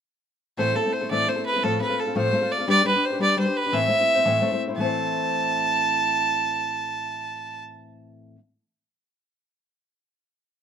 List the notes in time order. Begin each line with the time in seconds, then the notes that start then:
0.57 A2 E3 A3 C4 E4 A4 C5
0.74 A3 C4 E4 A4
0.84 A3 C4 E4 A4
0.92 C5
1.01 A3 C4 E4 A4
1.10 A2 E3 A3 C4 E4 A4 D5
1.27 A3 C4 E4 A4 C5
1.36 A3 C4 E4 A4
1.46 B4
1.54 A3 C4 E4 A4
1.63 A2 F3 A3 C4 F4 A4
1.80 A3 C4 F4 A4 B4
1.89 A3 C4 F4 A4
1.99 A4
2.06 A3 C4 F4 A4
2.15 A2 F3 A3 C4 F4 A4 C5
2.32 A3 C4 F4 A4
2.41 A3 C4 F4 A4
2.51 D5
2.59 A3 C4 F4 A4
2.67 G3 D4 G4 B4 D5
2.84 G3 D4 G4 B4
2.93 D4 G4 B4
3.05 C5
3.10 D4 G4 B4
3.19 G3 D4 G4 B4 D5
3.36 G3 D4 G4 B4 C5
3.46 D4 G4 B4
3.56 B4
3.64 D4 G4 B4
3.72 A2 E3 A3 C4 E4 C5 E5
3.89 A3 C4 E4 C5
3.99 A3 C4 E4 C5
4.15 A3 C4 E4 C5
4.25 A2 E3 A3 C4 E4 C5
4.42 A3 C4 E4 C5
4.51 A3 C4 E4 C5
4.68 A3 C4 E4 C5
4.75 A2 E3 A5
4.79 A3 C4 E4
4.85 C5